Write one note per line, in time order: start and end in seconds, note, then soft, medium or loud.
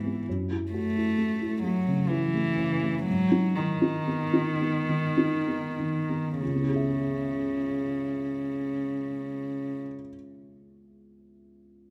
0.00 0.22 C#2 soft
0.00 0.28 G#2 soft
0.00 0.25 E3 medium
0.00 0.06 B3 soft
0.00 0.29 E4 soft
0.00 0.29 F#4 soft
0.06 0.27 B3 soft
0.29 3.03 F#2 soft
0.51 0.86 E4 soft
0.72 1.58 A3 medium
0.72 0.95 F#4 soft
0.97 1.32 E4 soft
1.18 1.54 A3 soft
1.41 1.77 E4 soft
1.63 2.11 F#3 medium
1.63 2.01 A3 soft
1.88 2.25 C#3 soft
2.09 3.03 E3 medium
2.09 2.48 E4 soft
2.34 2.72 A3 soft
2.58 2.96 C#3 soft
2.83 3.06 A3 soft
3.03 6.38 G#2 soft
3.03 3.57 F#3 medium
3.32 3.71 D#4 soft
3.55 6.40 D#3 medium
3.55 3.81 E4 soft
3.82 4.24 D#4 soft
4.07 4.51 B3 soft
4.33 4.78 D#4 soft
4.61 5.07 B3 soft
4.89 5.36 D#3 soft
5.17 5.66 D#4 soft
5.48 5.97 B3 soft
5.80 6.29 D#3 soft
6.09 6.40 B3 soft
6.40 9.80 C#2 soft
6.40 9.79 C#3 soft
6.48 9.87 C#3 soft
6.55 9.94 B3 soft
6.62 10.01 E4 soft
6.69 10.08 G#4 soft
6.76 10.15 E5 soft